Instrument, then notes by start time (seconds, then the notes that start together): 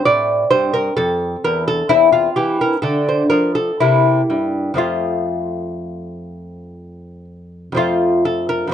lute
Already playing: C4
0.05 A2 D5
0.50 G2 C5
0.74 A#4
0.97 F2 A4
1.44 E2 A#4
1.68 A4
1.89 E2 C4 E4
2.12 F4
2.36 E3 G4
2.61 A#4
2.82 D3 A3 A4
3.09 C5
3.30 F3 A#4
3.55 A4
3.80 C3 A#3 E4
4.30 G2
4.74 F2 F3 A3
4.78 F4
7.72 F2 F3 A3
7.77 F4
8.25 A4
8.49 A#4
8.67 F2 F3